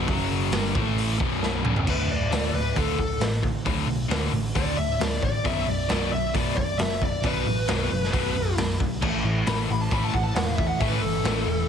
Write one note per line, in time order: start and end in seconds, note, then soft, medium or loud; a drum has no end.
0.08 0.49 F#1 medium
0.08 0.52 F#2 loud
0.08 0.52 C#3 loud
0.08 0.53 F#3 loud
0.08 kick loud
0.08 open hi-hat medium
0.52 0.73 G1 loud
0.52 0.74 G2 medium
0.52 0.74 D3 loud
0.52 0.74 G3 medium
0.52 snare loud
0.52 open hi-hat medium
0.74 1.17 A1 loud
0.74 1.19 A2 medium
0.74 1.19 E3 loud
0.74 1.19 A3 loud
0.74 kick loud
0.98 open hi-hat medium
1.19 1.64 B1 medium
1.19 1.64 F#2 medium
1.19 1.64 B2 loud
1.19 kick loud
1.43 snare medium
1.64 1.85 C#1 medium
1.64 1.86 C#2 medium
1.64 1.86 G#2 loud
1.64 1.86 C#3 medium
1.64 mid tom loud
1.76 floor tom loud
1.87 2.05 D1 medium
1.87 2.08 D2 medium
1.87 2.08 A2 medium
1.87 2.09 D3 loud
1.87 2.10 B4 loud
1.87 kick loud
1.87 crash loud
2.08 2.26 D1 medium
2.08 2.29 D2 medium
2.08 2.29 A2 medium
2.08 2.54 D5 medium
2.31 2.48 D1 loud
2.31 2.52 D2 medium
2.31 2.52 A2 medium
2.31 2.53 D3 loud
2.31 snare loud
2.31 open hi-hat medium
2.53 2.71 D1 medium
2.53 2.74 D2 medium
2.53 2.74 A2 medium
2.53 2.76 B4 medium
2.76 2.93 D1 medium
2.76 2.97 D2 medium
2.76 2.98 A2 medium
2.76 2.98 D3 medium
2.76 2.99 A4 medium
2.76 kick loud
2.76 open hi-hat medium
2.99 3.16 D1 medium
2.99 3.19 D2 medium
2.99 3.20 A2 medium
2.99 3.21 A4 medium
2.99 kick medium
3.19 3.55 A1 medium
3.19 3.41 D2 medium
3.19 3.41 A2 medium
3.19 snare loud
3.19 open hi-hat medium
3.42 3.63 D2 medium
3.42 3.64 A2 medium
3.42 kick medium
3.65 3.83 D1 medium
3.65 3.86 D2 loud
3.65 3.87 A2 loud
3.65 3.87 D3 loud
3.65 kick loud
3.65 open hi-hat medium
3.86 4.04 B1 medium
3.86 4.07 D2 medium
3.86 4.08 A2 medium
4.08 4.27 D1 loud
4.08 4.31 D2 medium
4.08 4.31 A2 medium
4.08 4.31 D3 medium
4.08 snare loud
4.08 open hi-hat medium
4.32 4.50 A1 loud
4.32 4.53 D2 medium
4.32 4.53 A2 medium
4.55 4.73 D1 medium
4.55 4.76 D2 medium
4.55 4.76 A2 medium
4.55 4.77 D3 medium
4.55 4.77 D5 loud
4.55 kick loud
4.55 open hi-hat medium
4.77 4.95 D1 loud
4.77 4.98 D2 medium
4.77 4.98 A2 medium
4.77 5.00 E5 loud
5.00 5.18 D1 medium
5.00 5.20 D2 medium
5.00 5.20 A2 loud
5.00 5.23 D5 medium
5.00 snare loud
5.00 open hi-hat medium
5.22 5.40 A1 medium
5.22 5.42 D2 medium
5.22 5.43 A2 medium
5.22 5.45 D5 loud
5.22 kick medium
5.44 5.62 B0 medium
5.44 5.66 B1 loud
5.44 5.66 F#2 loud
5.44 5.66 B2 loud
5.44 5.68 E5 loud
5.44 kick loud
5.44 open hi-hat medium
5.67 5.85 B0 medium
5.67 5.88 B1 medium
5.67 5.88 F#2 medium
5.67 5.88 D5 medium
5.89 6.07 B0 loud
5.89 6.11 B1 medium
5.89 6.11 F#2 medium
5.89 6.12 B2 medium
5.89 6.11 D5 loud
5.89 snare loud
5.89 open hi-hat medium
6.11 6.29 B0 medium
6.11 6.33 B1 medium
6.11 6.33 F#2 medium
6.11 6.34 E5 medium
6.34 6.52 B0 medium
6.34 6.55 B1 medium
6.34 6.56 F#2 medium
6.34 6.56 B2 loud
6.34 6.55 D5 medium
6.34 kick loud
6.34 open hi-hat medium
6.56 6.74 B0 medium
6.56 6.77 B1 medium
6.56 6.78 F#2 medium
6.56 6.78 D5 loud
6.56 kick medium
6.78 7.13 F#1 loud
6.78 6.99 B1 medium
6.78 7.00 F#2 loud
6.78 7.01 E5 medium
6.78 snare loud
6.78 open hi-hat medium
7.02 7.22 B1 medium
7.02 7.22 F#2 loud
7.02 7.24 D5 medium
7.02 kick medium
7.23 7.41 B0 loud
7.23 7.46 B1 loud
7.23 7.46 F#2 loud
7.23 7.46 B2 loud
7.23 8.56 B4 loud
7.23 kick loud
7.23 open hi-hat medium
7.46 7.63 A1 medium
7.46 7.67 B1 medium
7.46 7.67 F#2 medium
7.68 7.86 B0 loud
7.68 7.89 B1 medium
7.68 7.90 F#2 loud
7.68 7.90 B2 loud
7.68 snare loud
7.68 open hi-hat medium
7.90 8.08 F#1 medium
7.90 8.11 B1 medium
7.90 8.12 F#2 medium
8.04 snare soft
8.13 8.31 B0 medium
8.13 8.34 B1 medium
8.13 8.34 F#2 medium
8.13 8.34 B2 loud
8.13 kick loud
8.13 open hi-hat medium
8.35 8.53 B0 medium
8.35 8.56 B1 medium
8.35 8.57 F#2 medium
8.57 8.74 B0 medium
8.57 8.79 B1 medium
8.57 8.79 F#2 medium
8.57 snare loud
8.57 open hi-hat medium
8.80 9.03 B0 medium
8.80 9.00 B1 medium
8.80 9.01 F#2 medium
8.80 kick medium
9.02 9.20 A1 loud
9.02 9.23 A2 loud
9.02 9.24 E3 loud
9.02 9.24 A3 loud
9.02 9.91 C#4 medium
9.02 9.91 E4 medium
9.02 9.91 A4 medium
9.02 kick loud
9.02 crash loud
9.23 9.41 A1 medium
9.23 9.46 A2 medium
9.23 9.45 E3 medium
9.47 9.65 A1 loud
9.47 9.68 A2 loud
9.47 9.68 E3 loud
9.47 9.69 A3 loud
9.47 9.58 B5 loud
9.47 snare loud
9.47 open hi-hat medium
9.69 9.87 A1 loud
9.69 9.90 A2 medium
9.69 9.90 E3 medium
9.69 9.81 B5 medium
9.81 9.92 A5 loud
9.91 10.09 A1 medium
9.91 10.13 A2 medium
9.91 10.13 E3 medium
9.91 10.13 A3 medium
9.91 10.80 C#4 medium
9.91 10.81 E4 medium
9.91 10.81 A4 medium
9.91 10.03 B5 medium
9.91 kick loud
9.91 open hi-hat medium
10.04 10.14 A5 medium
10.13 10.31 A1 medium
10.13 10.34 A2 medium
10.13 10.34 E3 medium
10.13 10.23 F#5 medium
10.13 kick medium
10.23 10.35 A5 medium
10.35 10.70 E1 medium
10.35 10.57 A2 medium
10.35 10.57 E3 medium
10.35 10.45 F#5 loud
10.35 snare loud
10.35 open hi-hat medium
10.45 10.56 F5 loud
10.56 10.79 A2 medium
10.56 10.79 E3 medium
10.56 10.67 E5 loud
10.56 kick medium
10.67 10.79 F#5 loud
10.79 10.98 A1 loud
10.79 11.02 A2 loud
10.79 11.01 E3 loud
10.79 11.02 A3 loud
10.79 11.69 C#4 medium
10.79 11.69 E4 medium
10.79 11.69 A4 medium
10.79 10.91 E5 medium
10.79 kick loud
10.79 open hi-hat medium
10.89 11.02 B4 loud
11.00 11.19 G1 loud
11.00 11.23 A2 medium
11.00 11.23 E3 medium
11.00 11.69 A4 loud
11.23 11.42 A1 loud
11.23 11.46 A2 medium
11.23 11.47 E3 loud
11.23 11.47 A3 loud
11.23 snare loud
11.23 open hi-hat medium
11.45 11.63 E1 medium
11.45 11.68 A2 medium
11.45 11.68 E3 medium